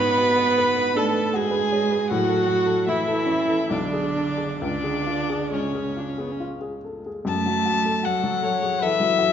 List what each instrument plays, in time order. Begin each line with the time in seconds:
Already playing: grand piano G#2, cello B3, viola B4, violin B5
0.00 grand piano B4
0.18 grand piano F#4
0.38 grand piano B4
0.58 grand piano B3
0.77 grand piano B4
0.94 cello A3, grand piano D4, viola A4, violin A5
1.13 grand piano B4
1.34 cello G#3, grand piano F#4, viola G#4, violin G#5
1.51 grand piano B4
1.72 grand piano C#5
1.91 grand piano B4
2.10 grand piano A2, cello F#3, viola F#4, violin F#5
2.29 grand piano A4
2.46 grand piano F#4
2.66 grand piano A4
2.87 cello E3, grand piano A3, viola E4, violin E5
3.08 grand piano A4
3.26 grand piano C#4
3.49 grand piano A4
3.70 grand piano B1, cello D3, viola D4, violin D5
3.93 grand piano G#4
4.16 grand piano D4
4.37 grand piano G#4
4.61 grand piano C#2, cello D3, viola D4, violin D5
4.84 grand piano G#4
5.07 grand piano F4
5.30 grand piano G#4
5.51 cello C#3, grand piano G#3, viola C#4, violin C#5
5.75 grand piano G#4
5.97 viola D4, grand piano F4
6.09 viola C#4
6.18 viola B3, grand piano G#4
6.32 viola C#4
6.40 grand piano F4
6.61 grand piano G#4
6.84 grand piano A4
7.06 grand piano G#4
7.25 grand piano F#2, violin A5
7.30 cello A3
7.46 grand piano F#3
7.65 grand piano F#4
7.85 grand piano A4
8.03 cello F#3, grand piano F#4, viola A4, violin F#5
8.24 grand piano F#3
8.43 grand piano A4, viola C#5
8.62 grand piano G#4
8.82 cello E3, grand piano A4, viola B4, violin E5
9.00 grand piano F#3
9.18 grand piano F#4, viola A4